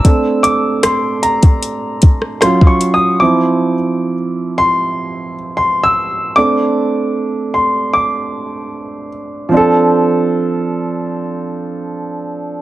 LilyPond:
<<
  \new Staff \with { instrumentName = "Grand piano" } { \time 4/4 \key d \minor \tempo 4 = 76 << { e'''8 d'''8 c'''8 bes''4. \tuplet 3/2 { c'''8 des'''8 ees'''8 } | d'''4~ d'''16 r8 c'''4 r16 \tuplet 3/2 { c'''8 e'''4 } | d'''4. c'''8 d'''4. r8 | <f c' d' a'>1 | } \\ { <a c' d'>4. r4. <ges des' f'>4 | <f c' e'>8 r2. r8 | <a c' d'>1 | r1 | } >> }
  \new DrumStaff \with { instrumentName = "Drums" } \drummode { \time 4/4 <hh bd>8 hh8 <hh ss>8 hh16 <hh bd>16 hh8 <hh bd>16 ss16 <hh ss>16 bd16 hh8 | r4 r4 r4 r4 | r4 r4 r4 r4 | r4 r4 r4 r4 | }
>>